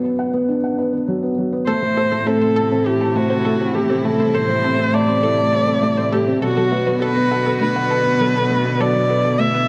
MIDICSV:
0, 0, Header, 1, 6, 480
1, 0, Start_track
1, 0, Tempo, 594059
1, 1349, Time_signature, 4, 2, 24, 8
1, 7824, End_track
2, 0, Start_track
2, 0, Title_t, "Viola"
2, 0, Program_c, 0, 41
2, 1346, Note_on_c, 0, 72, 101
2, 1831, Note_on_c, 0, 69, 104
2, 1843, Note_off_c, 0, 72, 0
2, 2309, Note_on_c, 0, 67, 91
2, 2321, Note_off_c, 0, 69, 0
2, 2553, Note_on_c, 0, 66, 94
2, 2565, Note_off_c, 0, 67, 0
2, 3031, Note_on_c, 0, 67, 83
2, 3043, Note_off_c, 0, 66, 0
2, 3268, Note_off_c, 0, 67, 0
2, 3273, Note_on_c, 0, 69, 98
2, 3511, Note_on_c, 0, 72, 110
2, 3523, Note_off_c, 0, 69, 0
2, 3994, Note_on_c, 0, 74, 123
2, 4006, Note_off_c, 0, 72, 0
2, 4953, Note_on_c, 0, 67, 92
2, 4965, Note_off_c, 0, 74, 0
2, 5191, Note_off_c, 0, 67, 0
2, 5196, Note_on_c, 0, 66, 99
2, 5640, Note_off_c, 0, 66, 0
2, 5675, Note_on_c, 0, 71, 111
2, 6120, Note_off_c, 0, 71, 0
2, 6156, Note_on_c, 0, 71, 119
2, 7113, Note_on_c, 0, 74, 109
2, 7125, Note_off_c, 0, 71, 0
2, 7596, Note_on_c, 0, 76, 116
2, 7608, Note_off_c, 0, 74, 0
2, 7824, Note_off_c, 0, 76, 0
2, 7824, End_track
3, 0, Start_track
3, 0, Title_t, "Synth arpeggio sound"
3, 0, Program_c, 1, 84
3, 1352, Note_on_c, 1, 69, 102
3, 1454, Note_off_c, 1, 69, 0
3, 1593, Note_on_c, 1, 69, 72
3, 1660, Note_off_c, 1, 69, 0
3, 1711, Note_on_c, 1, 69, 75
3, 1779, Note_off_c, 1, 69, 0
3, 1831, Note_on_c, 1, 57, 83
3, 1899, Note_off_c, 1, 57, 0
3, 1952, Note_on_c, 1, 72, 74
3, 2019, Note_off_c, 1, 72, 0
3, 2069, Note_on_c, 1, 69, 102
3, 2172, Note_off_c, 1, 69, 0
3, 2311, Note_on_c, 1, 69, 83
3, 2379, Note_off_c, 1, 69, 0
3, 2430, Note_on_c, 1, 69, 75
3, 2498, Note_off_c, 1, 69, 0
3, 2549, Note_on_c, 1, 57, 71
3, 2618, Note_off_c, 1, 57, 0
3, 2666, Note_on_c, 1, 72, 78
3, 2737, Note_off_c, 1, 72, 0
3, 2787, Note_on_c, 1, 69, 101
3, 2891, Note_off_c, 1, 69, 0
3, 3028, Note_on_c, 1, 69, 75
3, 3097, Note_off_c, 1, 69, 0
3, 3149, Note_on_c, 1, 69, 79
3, 3218, Note_off_c, 1, 69, 0
3, 3271, Note_on_c, 1, 57, 88
3, 3339, Note_off_c, 1, 57, 0
3, 3393, Note_on_c, 1, 72, 77
3, 3460, Note_off_c, 1, 72, 0
3, 3511, Note_on_c, 1, 69, 96
3, 3613, Note_off_c, 1, 69, 0
3, 3750, Note_on_c, 1, 69, 79
3, 3818, Note_off_c, 1, 69, 0
3, 3870, Note_on_c, 1, 69, 77
3, 3938, Note_off_c, 1, 69, 0
3, 3988, Note_on_c, 1, 57, 77
3, 4057, Note_off_c, 1, 57, 0
3, 4108, Note_on_c, 1, 72, 77
3, 4177, Note_off_c, 1, 72, 0
3, 4228, Note_on_c, 1, 69, 96
3, 4332, Note_off_c, 1, 69, 0
3, 4466, Note_on_c, 1, 69, 82
3, 4536, Note_off_c, 1, 69, 0
3, 4587, Note_on_c, 1, 69, 80
3, 4657, Note_off_c, 1, 69, 0
3, 4705, Note_on_c, 1, 57, 85
3, 4776, Note_off_c, 1, 57, 0
3, 4827, Note_on_c, 1, 72, 81
3, 4897, Note_off_c, 1, 72, 0
3, 4947, Note_on_c, 1, 69, 98
3, 5051, Note_off_c, 1, 69, 0
3, 5189, Note_on_c, 1, 69, 88
3, 5258, Note_off_c, 1, 69, 0
3, 5309, Note_on_c, 1, 69, 82
3, 5378, Note_off_c, 1, 69, 0
3, 5427, Note_on_c, 1, 57, 72
3, 5497, Note_off_c, 1, 57, 0
3, 5549, Note_on_c, 1, 71, 76
3, 5618, Note_off_c, 1, 71, 0
3, 5672, Note_on_c, 1, 69, 111
3, 5773, Note_off_c, 1, 69, 0
3, 5910, Note_on_c, 1, 69, 79
3, 5978, Note_off_c, 1, 69, 0
3, 6028, Note_on_c, 1, 69, 77
3, 6097, Note_off_c, 1, 69, 0
3, 6149, Note_on_c, 1, 57, 81
3, 6218, Note_off_c, 1, 57, 0
3, 6271, Note_on_c, 1, 71, 76
3, 6339, Note_off_c, 1, 71, 0
3, 6389, Note_on_c, 1, 69, 103
3, 6492, Note_off_c, 1, 69, 0
3, 6634, Note_on_c, 1, 69, 85
3, 6700, Note_off_c, 1, 69, 0
3, 6751, Note_on_c, 1, 69, 78
3, 6819, Note_off_c, 1, 69, 0
3, 6873, Note_on_c, 1, 57, 77
3, 6940, Note_off_c, 1, 57, 0
3, 6993, Note_on_c, 1, 71, 78
3, 7060, Note_off_c, 1, 71, 0
3, 7114, Note_on_c, 1, 69, 103
3, 7214, Note_off_c, 1, 69, 0
3, 7350, Note_on_c, 1, 69, 70
3, 7418, Note_off_c, 1, 69, 0
3, 7473, Note_on_c, 1, 69, 72
3, 7540, Note_off_c, 1, 69, 0
3, 7589, Note_on_c, 1, 57, 83
3, 7658, Note_off_c, 1, 57, 0
3, 7711, Note_on_c, 1, 71, 76
3, 7779, Note_off_c, 1, 71, 0
3, 7824, End_track
4, 0, Start_track
4, 0, Title_t, "Felt piano"
4, 0, Program_c, 2, 0
4, 0, Control_c, 2, 64, 127
4, 0, Note_on_c, 2, 54, 75
4, 0, Note_on_c, 2, 59, 86
4, 0, Note_on_c, 2, 62, 83
4, 0, Note_on_c, 2, 71, 80
4, 0, Note_on_c, 2, 78, 73
4, 30, Note_off_c, 2, 59, 0
4, 30, Note_on_c, 2, 59, 71
4, 98, Note_off_c, 2, 59, 0
4, 151, Note_off_c, 2, 78, 0
4, 151, Note_on_c, 2, 78, 82
4, 219, Note_off_c, 2, 78, 0
4, 271, Note_on_c, 2, 59, 99
4, 384, Note_off_c, 2, 59, 0
4, 391, Note_off_c, 2, 62, 0
4, 391, Note_on_c, 2, 62, 84
4, 458, Note_off_c, 2, 62, 0
4, 514, Note_on_c, 2, 78, 72
4, 626, Note_off_c, 2, 78, 0
4, 632, Note_off_c, 2, 71, 0
4, 632, Note_on_c, 2, 71, 73
4, 745, Note_off_c, 2, 71, 0
4, 751, Note_on_c, 2, 59, 78
4, 819, Note_off_c, 2, 59, 0
4, 870, Note_off_c, 2, 54, 0
4, 870, Note_on_c, 2, 54, 85
4, 984, Note_off_c, 2, 54, 0
4, 991, Note_on_c, 2, 59, 79
4, 1059, Note_off_c, 2, 59, 0
4, 1114, Note_on_c, 2, 54, 74
4, 1226, Note_off_c, 2, 54, 0
4, 1233, Note_on_c, 2, 59, 99
4, 1345, Note_off_c, 2, 59, 0
4, 1352, Note_on_c, 2, 57, 81
4, 1359, Control_c, 2, 64, 0
4, 1459, Note_off_c, 2, 57, 0
4, 1472, Note_on_c, 2, 57, 73
4, 1511, Control_c, 2, 64, 127
4, 1539, Note_off_c, 2, 57, 0
4, 1590, Note_on_c, 2, 72, 75
4, 1704, Note_off_c, 2, 72, 0
4, 1712, Note_on_c, 2, 57, 72
4, 1779, Note_off_c, 2, 57, 0
4, 1830, Note_on_c, 2, 60, 82
4, 1938, Note_off_c, 2, 60, 0
4, 1951, Note_on_c, 2, 60, 74
4, 2018, Note_off_c, 2, 60, 0
4, 2075, Note_on_c, 2, 81, 77
4, 2141, Note_off_c, 2, 81, 0
4, 2193, Note_on_c, 2, 60, 98
4, 2305, Note_off_c, 2, 60, 0
4, 2314, Note_on_c, 2, 64, 78
4, 2380, Note_off_c, 2, 64, 0
4, 2436, Note_on_c, 2, 81, 70
4, 2547, Note_off_c, 2, 81, 0
4, 2558, Note_on_c, 2, 72, 71
4, 2668, Note_off_c, 2, 72, 0
4, 2675, Note_on_c, 2, 60, 71
4, 2740, Note_off_c, 2, 60, 0
4, 2794, Note_on_c, 2, 57, 82
4, 2906, Note_off_c, 2, 57, 0
4, 2912, Note_on_c, 2, 60, 79
4, 2979, Note_off_c, 2, 60, 0
4, 3033, Note_on_c, 2, 57, 74
4, 3145, Note_off_c, 2, 57, 0
4, 3152, Note_on_c, 2, 60, 99
4, 3265, Note_off_c, 2, 60, 0
4, 3269, Note_on_c, 2, 57, 78
4, 3378, Note_off_c, 2, 57, 0
4, 3390, Note_on_c, 2, 57, 76
4, 3458, Note_off_c, 2, 57, 0
4, 3509, Note_on_c, 2, 72, 81
4, 3623, Note_off_c, 2, 72, 0
4, 3626, Note_on_c, 2, 57, 73
4, 3696, Note_off_c, 2, 57, 0
4, 3750, Note_on_c, 2, 60, 88
4, 3856, Note_off_c, 2, 60, 0
4, 3868, Note_on_c, 2, 60, 68
4, 3937, Note_off_c, 2, 60, 0
4, 3988, Note_on_c, 2, 81, 76
4, 4057, Note_off_c, 2, 81, 0
4, 4107, Note_on_c, 2, 60, 98
4, 4222, Note_off_c, 2, 60, 0
4, 4229, Note_on_c, 2, 64, 86
4, 4297, Note_off_c, 2, 64, 0
4, 4348, Note_on_c, 2, 81, 73
4, 4463, Note_off_c, 2, 81, 0
4, 4471, Note_on_c, 2, 72, 71
4, 4584, Note_off_c, 2, 72, 0
4, 4589, Note_on_c, 2, 60, 72
4, 4658, Note_off_c, 2, 60, 0
4, 4709, Note_on_c, 2, 57, 80
4, 4823, Note_off_c, 2, 57, 0
4, 4828, Note_on_c, 2, 60, 78
4, 4897, Note_off_c, 2, 60, 0
4, 4948, Note_on_c, 2, 57, 72
4, 5063, Note_off_c, 2, 57, 0
4, 5071, Note_on_c, 2, 60, 99
4, 5184, Note_off_c, 2, 60, 0
4, 5189, Note_on_c, 2, 54, 81
4, 5201, Control_c, 2, 64, 0
4, 5296, Note_off_c, 2, 54, 0
4, 5308, Note_on_c, 2, 54, 77
4, 5341, Control_c, 2, 64, 127
4, 5377, Note_off_c, 2, 54, 0
4, 5429, Note_on_c, 2, 71, 80
4, 5543, Note_off_c, 2, 71, 0
4, 5549, Note_on_c, 2, 54, 70
4, 5617, Note_off_c, 2, 54, 0
4, 5669, Note_on_c, 2, 59, 89
4, 5777, Note_off_c, 2, 59, 0
4, 5789, Note_on_c, 2, 59, 74
4, 5858, Note_off_c, 2, 59, 0
4, 5907, Note_on_c, 2, 78, 80
4, 5977, Note_off_c, 2, 78, 0
4, 6030, Note_on_c, 2, 59, 94
4, 6144, Note_off_c, 2, 59, 0
4, 6149, Note_on_c, 2, 62, 85
4, 6218, Note_off_c, 2, 62, 0
4, 6270, Note_on_c, 2, 78, 75
4, 6384, Note_off_c, 2, 78, 0
4, 6391, Note_on_c, 2, 71, 75
4, 6504, Note_off_c, 2, 71, 0
4, 6508, Note_on_c, 2, 59, 77
4, 6577, Note_off_c, 2, 59, 0
4, 6626, Note_on_c, 2, 54, 84
4, 6742, Note_off_c, 2, 54, 0
4, 6871, Note_on_c, 2, 54, 71
4, 6985, Note_off_c, 2, 54, 0
4, 6990, Note_on_c, 2, 59, 104
4, 7104, Note_off_c, 2, 59, 0
4, 7109, Note_on_c, 2, 54, 80
4, 7219, Note_off_c, 2, 54, 0
4, 7231, Note_on_c, 2, 54, 71
4, 7299, Note_off_c, 2, 54, 0
4, 7349, Note_on_c, 2, 71, 74
4, 7463, Note_off_c, 2, 71, 0
4, 7467, Note_on_c, 2, 54, 73
4, 7537, Note_off_c, 2, 54, 0
4, 7587, Note_on_c, 2, 59, 85
4, 7694, Note_off_c, 2, 59, 0
4, 7706, Note_on_c, 2, 59, 68
4, 7776, Note_off_c, 2, 59, 0
4, 7824, End_track
5, 0, Start_track
5, 0, Title_t, "String section"
5, 0, Program_c, 3, 48
5, 1353, Note_on_c, 3, 57, 71
5, 1354, Note_on_c, 3, 48, 79
5, 1354, Note_on_c, 3, 52, 71
5, 1356, Note_on_c, 3, 64, 88
5, 3252, Note_off_c, 3, 57, 0
5, 3274, Note_on_c, 3, 55, 75
5, 5160, Note_off_c, 3, 48, 0
5, 5160, Note_off_c, 3, 52, 0
5, 5160, Note_off_c, 3, 64, 0
5, 5172, Note_off_c, 3, 55, 0
5, 5195, Note_on_c, 3, 59, 75
5, 5196, Note_on_c, 3, 50, 80
5, 5197, Note_on_c, 3, 54, 71
5, 5199, Note_on_c, 3, 66, 96
5, 7095, Note_off_c, 3, 66, 0
5, 7115, Note_on_c, 3, 64, 86
5, 7824, Note_off_c, 3, 50, 0
5, 7824, Note_off_c, 3, 54, 0
5, 7824, Note_off_c, 3, 59, 0
5, 7824, Note_off_c, 3, 64, 0
5, 7824, End_track
6, 0, Start_track
6, 0, Title_t, "Cello section"
6, 0, Program_c, 4, 48
6, 1350, Note_on_c, 4, 45, 90
6, 5166, Note_off_c, 4, 45, 0
6, 5190, Note_on_c, 4, 47, 86
6, 7824, Note_off_c, 4, 47, 0
6, 7824, End_track
0, 0, End_of_file